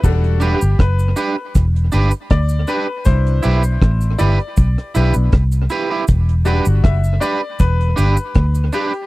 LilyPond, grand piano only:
\new Staff \with { instrumentName = "Grand piano" } { \time 4/4 \key e \minor \tempo 4 = 79 << { \tuplet 3/2 { a'4 g'8 } b'4 r4 d''8 b'8 | c''4. d''4 r4. | r4 e''8 d''8 b'4. g'8 | } \\ { <g d' fis'>8 r2. r8 | <d' e' b'>4. r4 <b d' e'>8 r4 | r8 <g d' fis'>8 r2. | } >> }